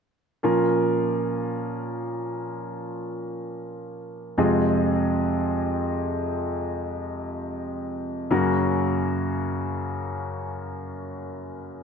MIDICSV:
0, 0, Header, 1, 2, 480
1, 0, Start_track
1, 0, Key_signature, -5, "minor"
1, 0, Tempo, 500000
1, 11357, End_track
2, 0, Start_track
2, 0, Title_t, "Grand piano"
2, 0, Program_c, 0, 0
2, 414, Note_on_c, 0, 58, 46
2, 418, Note_on_c, 0, 61, 41
2, 420, Note_on_c, 0, 65, 43
2, 421, Note_on_c, 0, 46, 45
2, 422, Note_on_c, 0, 53, 44
2, 429, Note_on_c, 0, 70, 53
2, 596, Control_c, 0, 64, 127
2, 4157, Note_off_c, 0, 58, 0
2, 4159, Note_off_c, 0, 61, 0
2, 4160, Note_off_c, 0, 46, 0
2, 4160, Note_off_c, 0, 53, 0
2, 4160, Note_off_c, 0, 65, 0
2, 4164, Note_off_c, 0, 70, 0
2, 4201, Note_on_c, 0, 41, 47
2, 4201, Note_on_c, 0, 56, 50
2, 4203, Note_on_c, 0, 60, 47
2, 4205, Note_on_c, 0, 48, 45
2, 4206, Note_on_c, 0, 65, 43
2, 4210, Control_c, 0, 64, 0
2, 4211, Note_on_c, 0, 68, 51
2, 4397, Control_c, 0, 64, 127
2, 7939, Note_off_c, 0, 41, 0
2, 7939, Note_off_c, 0, 56, 0
2, 7940, Note_off_c, 0, 60, 0
2, 7941, Note_off_c, 0, 48, 0
2, 7941, Note_off_c, 0, 65, 0
2, 7944, Note_off_c, 0, 68, 0
2, 7973, Note_on_c, 0, 49, 47
2, 7974, Note_on_c, 0, 58, 52
2, 7975, Note_on_c, 0, 42, 49
2, 7977, Note_on_c, 0, 61, 43
2, 7982, Note_on_c, 0, 66, 48
2, 7983, Note_on_c, 0, 70, 52
2, 7989, Control_c, 0, 64, 0
2, 8155, Control_c, 0, 64, 127
2, 11357, Note_off_c, 0, 42, 0
2, 11357, Note_off_c, 0, 49, 0
2, 11357, Note_off_c, 0, 58, 0
2, 11357, Note_off_c, 0, 61, 0
2, 11357, Note_off_c, 0, 66, 0
2, 11357, Note_off_c, 0, 70, 0
2, 11357, End_track
0, 0, End_of_file